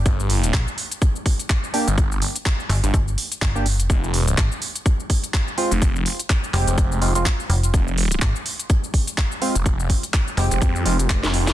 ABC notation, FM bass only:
X:1
M:4/4
L:1/8
Q:"Swing 16ths" 1/4=125
K:Fdor
V:1 name="FM bass" clef=bass
z2 B,,, z4 z | z3 G,,, G,,, z G,,,2 | z2 A,,, z4 z | z3 F,,, z3 F,,, |
z2 A,,, z4 z | z3 F,,, z4 |]